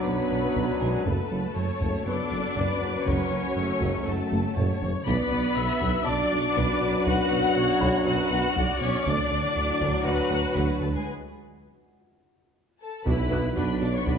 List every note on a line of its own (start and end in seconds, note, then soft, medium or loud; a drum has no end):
0.00 1.02 F#2 medium
0.00 1.02 F#3 medium
0.00 1.02 D4 medium
0.00 1.02 F#4 medium
0.00 1.52 B4 medium
0.06 0.17 B1 medium
0.06 0.15 B1 medium
0.06 0.22 B2 medium
0.06 0.81 B3 medium
0.06 0.81 B4 medium
0.06 0.81 B5 medium
0.32 0.42 B1 medium
0.32 0.40 B1 medium
0.32 0.47 B2 medium
0.56 0.66 B1 medium
0.56 0.64 B1 medium
0.56 0.72 B2 loud
0.56 taiko medium
0.81 0.91 B1 medium
0.81 0.90 B1 medium
0.81 0.97 B2 medium
0.81 1.07 G#3 medium
0.81 1.07 G#4 medium
0.81 1.06 G#5 medium
1.06 1.16 F#1 medium
1.06 1.15 F#1 medium
1.06 1.21 F#2 medium
1.06 4.90 F#2 medium
1.06 4.90 F#3 medium
1.06 2.06 A3 medium
1.06 4.91 C#4 medium
1.06 4.91 F#4 medium
1.06 2.05 A4 medium
1.06 2.07 A5 medium
1.06 taiko loud
1.31 1.41 F#1 medium
1.31 1.40 F#1 medium
1.31 1.47 F#3 medium
1.56 1.65 F#1 medium
1.56 1.67 F#1 medium
1.56 1.71 F#2 medium
1.56 2.07 C#5 medium
1.81 1.92 F#1 medium
1.81 1.90 F#1 medium
1.81 1.96 F#2 loud
1.81 taiko medium
2.06 2.17 F#1 medium
2.06 2.15 F#1 medium
2.06 2.21 F#2 medium
2.06 3.52 B3 medium
2.06 3.06 D4 medium
2.06 2.57 A4 medium
2.06 3.53 B4 medium
2.06 3.04 D5 loud
2.06 3.04 D6 loud
2.31 2.42 F#1 medium
2.31 2.40 F#1 medium
2.31 2.46 F#2 medium
2.56 2.66 F#1 medium
2.56 2.65 F#1 medium
2.56 2.72 F#2 loud
2.56 3.57 B4 medium
2.56 taiko medium
2.81 2.92 F#1 medium
2.81 2.91 F#1 medium
2.81 2.96 F#2 medium
3.06 3.16 F#1 medium
3.06 3.21 F#2 medium
3.06 4.05 C#4 medium
3.06 4.07 C#5 medium
3.06 4.07 C#6 loud
3.06 taiko loud
3.31 3.41 F#1 medium
3.31 3.46 F#3 medium
3.56 3.66 F#1 medium
3.56 3.65 F#1 medium
3.56 3.71 F#2 medium
3.56 4.55 A3 medium
3.81 3.91 F#1 medium
3.81 3.90 F#1 medium
3.81 3.97 F#2 loud
3.81 5.27 G#3 soft
3.81 5.28 F#4 medium
3.81 taiko medium
4.06 4.17 F#1 medium
4.06 4.15 F#1 medium
4.06 4.22 F#2 medium
4.06 4.82 A3 medium
4.06 4.82 A4 medium
4.06 4.82 A5 loud
4.32 4.42 F#1 medium
4.32 4.40 F#1 medium
4.32 4.47 F#2 medium
4.32 taiko high medium
4.57 4.65 F#1 medium
4.57 4.68 F#1 medium
4.57 4.72 F#2 medium
4.57 5.07 C#5 medium
4.57 taiko low-mid loud
4.82 4.90 F#1 medium
4.82 4.92 F#1 medium
4.82 4.97 F#2 medium
4.82 taiko low medium
5.06 5.15 B1 medium
5.06 5.17 B1 loud
5.06 9.03 F#2 medium
5.06 5.21 B2 loud
5.06 9.03 F#3 loud
5.06 6.03 B3 loud
5.06 9.03 D4 loud
5.06 9.03 F#4 loud
5.06 6.03 B4 loud
5.06 5.56 D5 medium
5.06 6.03 B5 loud
5.06 taiko loud
5.31 5.40 B1 medium
5.31 5.42 B1 medium
5.31 5.47 B3 medium
5.56 5.65 B1 medium
5.56 5.67 B1 medium
5.56 5.72 B2 medium
5.56 6.06 E5 loud
5.82 5.92 B1 loud
5.82 5.90 B1 loud
5.82 5.97 B2 loud
5.82 taiko medium
6.04 6.17 B1 medium
6.04 6.15 B1 medium
6.04 6.22 B2 medium
6.04 7.05 D4 loud
6.04 6.56 D5 loud
6.04 7.07 D5 loud
6.04 7.52 A5 loud
6.04 7.07 D6 loud
6.32 6.42 B1 medium
6.32 6.40 B1 medium
6.32 6.47 B2 medium
6.56 6.65 B1 loud
6.56 6.67 B1 loud
6.56 6.71 B2 loud
6.56 7.56 B4 loud
6.56 taiko medium
6.81 6.92 B1 medium
6.81 6.90 B1 medium
6.81 6.96 B2 medium
7.06 7.16 B1 loud
7.06 7.14 B1 loud
7.06 7.21 B2 loud
7.06 8.04 F#4 loud
7.06 8.05 F#5 loud
7.06 8.04 F#6 loud
7.06 taiko loud
7.31 7.41 B1 medium
7.31 7.40 B1 medium
7.31 7.46 B3 medium
7.56 7.67 B1 medium
7.56 7.65 B1 medium
7.56 7.71 B2 medium
7.56 8.07 C#5 loud
7.81 7.91 B1 loud
7.81 7.90 B1 loud
7.81 7.96 B2 loud
7.81 9.27 B5 medium
7.81 taiko medium
8.06 8.17 B1 medium
8.06 8.15 B1 medium
8.06 8.21 B2 medium
8.06 8.80 F#4 loud
8.06 8.57 B4 medium
8.06 8.80 F#5 loud
8.06 8.80 F#6 loud
8.31 8.41 B1 medium
8.31 8.40 B1 medium
8.31 8.46 B2 medium
8.56 8.66 B1 loud
8.56 8.65 B1 loud
8.56 8.71 B2 loud
8.56 10.04 D5 loud
8.56 taiko medium
8.81 8.91 B1 medium
8.81 8.90 B1 medium
8.81 8.96 B2 medium
8.81 9.06 C#4 loud
8.81 9.06 C#5 medium
8.81 9.07 C#6 loud
9.06 9.21 D2 loud
9.06 9.14 D2 loud
9.06 9.16 D2 loud
9.06 11.03 A2 loud
9.06 11.03 F#3 loud
9.06 10.07 D4 loud
9.06 11.03 D4 loud
9.06 11.03 F#4 loud
9.06 10.07 D5 loud
9.06 10.07 D6 loud
9.06 taiko loud
9.31 9.41 D2 medium
9.31 9.40 D2 medium
9.31 9.46 D3 medium
9.56 9.66 D2 medium
9.56 9.72 D2 medium
9.56 9.65 D2 medium
9.81 9.91 D2 loud
9.81 9.96 D2 loud
9.81 9.90 D2 loud
9.81 taiko medium
10.06 10.21 D2 medium
10.06 10.14 D2 medium
10.06 10.16 D2 medium
10.06 10.57 F#4 loud
10.06 11.07 B4 loud
10.06 10.56 F#5 loud
10.06 10.56 F#6 loud
10.31 10.46 D2 medium
10.31 10.39 D2 medium
10.31 10.42 D2 medium
10.31 11.03 F#5 medium
10.55 10.71 D2 loud
10.55 10.67 D2 medium
10.55 10.65 D2 medium
10.55 10.82 F#3 medium
10.55 10.81 F#4 medium
10.55 10.81 F#5 loud
10.55 taiko medium
10.80 10.91 D2 medium
10.80 10.96 D2 medium
10.80 10.90 D2 medium
10.80 10.94 A3 medium
10.80 10.94 A4 medium
10.80 10.93 A5 medium
10.94 11.06 G#3 medium
10.94 11.07 G#4 medium
10.94 11.07 G#5 medium
12.82 13.05 A4 medium
12.82 13.05 A5 medium
13.06 13.51 B1 medium
13.06 13.21 B2 loud
13.06 14.18 B2 medium
13.06 14.18 F#3 medium
13.06 14.18 D4 medium
13.06 13.14 D4 medium
13.06 13.53 E4 medium
13.06 13.14 F#4 medium
13.06 14.18 F#4 medium
13.06 13.55 B4 medium
13.06 13.56 B5 loud
13.06 taiko loud
13.31 13.46 B3 medium
13.31 13.39 D4 medium
13.31 13.39 F#4 medium
13.31 14.18 F#5 medium
13.31 14.18 F#6 medium
13.31 taiko low medium
13.56 14.01 B1 medium
13.56 13.72 B2 medium
13.56 13.64 D4 medium
13.56 14.18 D4 medium
13.56 13.64 F#4 medium
13.56 13.81 B4 medium
13.56 13.82 B5 loud
13.56 taiko low medium
13.81 13.97 B2 medium
13.81 13.89 D4 medium
13.81 13.89 F#4 medium
13.81 13.94 D5 medium
13.81 13.95 D6 medium
13.94 14.07 C#5 medium
13.94 14.07 C#6 loud
14.06 14.18 B1 medium
14.06 14.18 B2 loud
14.06 14.14 D4 medium
14.06 14.14 F#4 medium
14.06 14.18 B4 medium
14.06 14.18 B5 loud
14.06 taiko medium